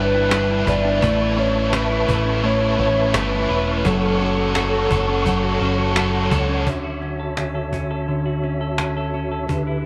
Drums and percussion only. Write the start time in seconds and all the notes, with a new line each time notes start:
0.31 cajon slap
0.67 cajon bass
1.02 cajon bass
1.38 cajon slap
1.73 cajon slap
2.09 cajon bass
2.44 cajon slap
2.79 cajon slap
3.14 cajon slap
3.50 cajon slap
3.85 cajon bass
4.20 cajon slap
4.55 cajon slap
4.91 cajon bass
5.26 cajon bass
5.61 cajon slap
5.96 cajon slap
6.31 cajon bass
6.67 cajon bass
7.02 cajon slap
7.37 cajon slap
7.73 cajon bass
8.08 cajon slap
8.43 cajon slap
8.78 cajon slap
9.14 cajon slap
9.49 cajon bass